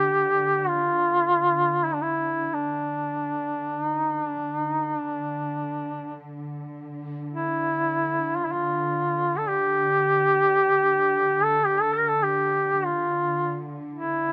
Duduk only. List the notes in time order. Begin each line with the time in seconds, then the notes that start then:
Already playing: G4
0.68 F4
1.84 E4
1.93 D4
2.02 E4
2.54 D4
3.85 D#4
4.21 D4
4.60 D#4
4.96 D4
7.31 E4
8.37 F4
8.45 E4
8.52 F4
9.38 A4
9.49 G4
11.44 A4
11.66 G4
11.82 A4
11.93 A#4
12.09 A4
12.23 G4
12.85 F4
13.94 E4